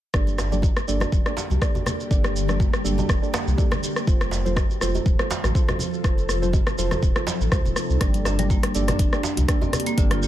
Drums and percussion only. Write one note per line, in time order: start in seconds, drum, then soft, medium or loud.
0.14 kick loud
0.14 cross-stick loud
0.14 shaker medium
0.27 muted conga medium
0.27 shaker soft
0.38 cross-stick medium
0.38 djembe slap medium
0.38 shaker medium
0.52 high conga medium
0.52 shaker soft
0.62 kick loud
0.62 muted conga soft
0.62 djembe tone medium
0.62 shaker soft
0.77 cross-stick medium
0.77 shaker soft
0.88 high conga medium
0.88 shaker medium
1.00 cross-stick medium
1.00 muted conga medium
1.00 djembe tone medium
1.00 shaker soft
1.12 kick loud
1.12 high conga medium
1.12 shaker medium
1.26 cross-stick medium
1.26 shaker soft
1.37 djembe slap loud
1.37 muted conga soft
1.37 shaker medium
1.50 high conga medium
1.50 djembe tone medium
1.50 shaker soft
1.62 kick loud
1.62 cross-stick medium
1.62 shaker soft
1.75 muted conga soft
1.75 djembe tone medium
1.75 low conga medium
1.75 shaker soft
1.86 cross-stick medium
1.86 low conga loud
1.86 shaker medium
2.00 shaker soft
2.11 kick loud
2.11 shaker medium
2.24 cross-stick medium
2.24 muted conga soft
2.24 shaker soft
2.36 shaker medium
2.48 cross-stick medium
2.48 high conga medium
2.48 shaker soft
2.60 kick loud
2.60 muted conga soft
2.60 djembe tone medium
2.60 low conga medium
2.60 shaker medium
2.73 cross-stick medium
2.73 shaker soft
2.85 high conga medium
2.85 shaker medium
2.98 muted conga medium
2.98 djembe tone medium
2.98 low conga medium
2.98 shaker soft
3.09 kick loud
3.09 cross-stick medium
3.09 shaker medium
3.23 shaker soft
3.33 cross-stick medium
3.33 muted conga soft
3.33 djembe slap loud
3.33 high conga medium
3.33 shaker medium
3.48 shaker soft
3.58 kick loud
3.58 djembe tone medium
3.58 shaker soft
3.71 cross-stick loud
3.71 muted conga soft
3.71 low conga medium
3.71 shaker soft
3.83 shaker loud
3.96 cross-stick medium
3.96 shaker soft
4.07 kick loud
4.07 shaker medium
4.21 cross-stick medium
4.21 muted conga soft
4.21 shaker soft
4.31 djembe slap medium
4.31 shaker medium
4.46 high conga loud
4.46 shaker soft
4.56 kick loud
4.56 cross-stick medium
4.56 muted conga soft
4.56 djembe tone loud
4.56 shaker medium
4.71 shaker soft
4.81 cross-stick medium
4.81 high conga medium
4.81 shaker loud
4.95 muted conga medium
4.95 djembe tone medium
4.95 shaker soft
5.06 kick loud
5.06 high conga medium
5.06 shaker medium
5.19 cross-stick medium
5.19 shaker soft
5.31 djembe slap loud
5.31 muted conga soft
5.31 shaker medium
5.44 cross-stick medium
5.44 high conga medium
5.44 djembe tone medium
5.44 shaker soft
5.55 kick loud
5.55 shaker medium
5.68 cross-stick medium
5.68 muted conga medium
5.68 djembe tone medium
5.68 low conga medium
5.68 shaker soft
5.79 low conga medium
5.79 shaker medium
5.93 shaker soft
6.04 kick loud
6.04 cross-stick medium
6.04 shaker medium
6.18 muted conga soft
6.18 shaker soft
6.29 cross-stick medium
6.29 shaker medium
6.43 high conga medium
6.43 shaker soft
6.53 kick loud
6.53 muted conga soft
6.53 djembe tone medium
6.53 low conga medium
6.53 shaker medium
6.67 cross-stick medium
6.67 shaker soft
6.78 high conga medium
6.78 shaker medium
6.91 cross-stick medium
6.91 muted conga medium
6.91 djembe tone medium
6.91 low conga medium
6.91 shaker soft
7.03 kick loud
7.03 shaker medium
7.16 cross-stick medium
7.16 shaker soft
7.27 djembe slap loud
7.27 muted conga soft
7.27 high conga medium
7.27 shaker medium
7.41 shaker soft
7.52 kick loud
7.52 cross-stick medium
7.52 djembe tone medium
7.52 shaker medium
7.65 muted conga soft
7.65 low conga medium
7.65 shaker soft
7.76 cross-stick medium
7.76 shaker medium
7.90 shaker soft
8.01 kick loud
8.01 cross-stick medium
8.01 closed hi-hat medium
8.01 shaker medium
8.14 closed hi-hat soft
8.14 muted conga soft
8.14 shaker soft
8.25 cross-stick medium
8.25 djembe slap medium
8.25 shaker medium
8.39 closed hi-hat soft
8.39 mid tom medium
8.39 high conga medium
8.39 shaker soft
8.50 kick loud
8.50 muted conga soft
8.50 djembe tone medium
8.50 shaker soft
8.63 cross-stick medium
8.63 closed hi-hat medium
8.63 shaker soft
8.75 closed hi-hat soft
8.75 high conga medium
8.75 shaker medium
8.88 cross-stick medium
8.88 closed hi-hat soft
8.88 mid tom medium
8.88 muted conga soft
8.88 djembe tone medium
8.88 shaker soft
8.99 kick loud
8.99 closed hi-hat medium
8.99 high conga medium
8.99 shaker medium
9.13 cross-stick medium
9.13 shaker soft
9.23 djembe slap loud
9.23 muted conga soft
9.23 shaker medium
9.37 closed hi-hat soft
9.37 djembe tone medium
9.37 high conga medium
9.37 shaker soft
9.48 kick loud
9.48 cross-stick medium
9.48 closed hi-hat medium
9.48 shaker soft
9.61 muted conga soft
9.61 djembe tone medium
9.61 low conga medium
9.61 shaker soft
9.73 cross-stick medium
9.73 closed hi-hat soft
9.73 low conga loud
9.73 shaker medium
9.80 closed hi-hat medium
9.86 closed hi-hat soft
9.86 shaker soft
9.98 kick loud
9.98 closed hi-hat medium
9.98 shaker soft
10.11 cross-stick medium
10.11 closed hi-hat soft
10.11 muted conga soft
10.11 shaker soft
10.23 shaker medium